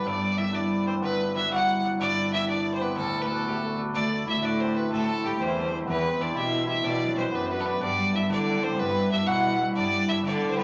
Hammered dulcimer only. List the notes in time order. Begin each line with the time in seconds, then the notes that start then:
Already playing: A3 B3 E4
0.05 D4
0.37 E4
0.52 D4
0.85 C4
1.02 B3
1.36 E4
1.51 F#4
1.99 D4
2.33 E4
2.48 D4
2.72 C4
2.81 B3
2.95 A3
3.24 A3
3.50 A3
3.57 A3
3.65 A3
3.93 D4
4.26 E4
4.41 D4
4.60 C4
4.89 A3
5.23 G3
5.39 C4
5.59 C4
5.86 B3
6.03 C4
6.20 D4
6.35 E4
6.66 E4
6.83 D4
7.17 C4
7.32 B3
7.49 B3
7.65 B3
7.81 D4
8.13 E4
8.29 D4
8.40 D4
8.51 D4
8.62 C4
8.78 B3
9.11 E4
9.26 F#4
9.48 E4
9.76 D4
10.08 E4
10.23 D4
10.48 C4
10.56 B3